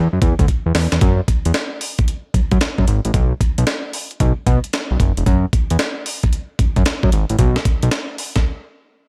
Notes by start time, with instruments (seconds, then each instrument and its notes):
0.13 analog synth bass F#2
0.22 analog synth bass E2, kick, closed hi-hat
0.39 analog synth bass D2, kick, closed hi-hat
0.48 kick, closed hi-hat
0.66 analog synth bass E2
0.75 analog synth bass E2, snare, open hi-hat
0.92 analog synth bass E2, snare, closed hi-hat
1.01 analog synth bass F#2, kick, closed hi-hat
1.28 kick, closed hi-hat
1.45 analog synth bass E2, closed hi-hat
1.54 snare, closed hi-hat
1.81 open hi-hat
1.98 kick, closed hi-hat
2.08 closed hi-hat
2.34 analog synth bass F#2, kick, closed hi-hat
2.51 analog synth bass F#2, kick, closed hi-hat
2.61 snare, closed hi-hat
2.78 analog synth bass F#2, kick
2.88 analog synth bass G#1, closed hi-hat
3.05 analog synth bass A1, closed hi-hat
3.14 analog synth bass B1, kick, closed hi-hat
3.41 kick, closed hi-hat
3.58 analog synth bass B1, closed hi-hat
3.67 snare, closed hi-hat
3.93 open hi-hat
4.11 closed hi-hat
4.20 analog synth bass B1, kick, closed hi-hat
4.47 analog synth bass B2, kick, closed hi-hat
4.64 closed hi-hat
4.73 snare, closed hi-hat
4.91 analog synth bass B1
5.00 analog synth bass F#1, kick, closed hi-hat
5.17 analog synth bass E1, closed hi-hat
5.26 analog synth bass F#2, kick, closed hi-hat
5.53 kick, closed hi-hat
5.70 analog synth bass E2, closed hi-hat
5.79 snare, closed hi-hat
6.06 open hi-hat
6.23 kick, closed hi-hat
6.33 closed hi-hat
6.59 analog synth bass F#2, kick, closed hi-hat
6.76 analog synth bass F#2, kick, closed hi-hat
6.86 snare, closed hi-hat
7.03 analog synth bass F#2, kick
7.12 analog synth bass G#1, closed hi-hat
7.30 analog synth bass A1, closed hi-hat
7.39 analog synth bass B1, kick, closed hi-hat
7.56 snare
7.65 kick, closed hi-hat
7.83 analog synth bass B1, closed hi-hat
7.91 snare, closed hi-hat
8.18 open hi-hat
8.36 kick, snare, closed hi-hat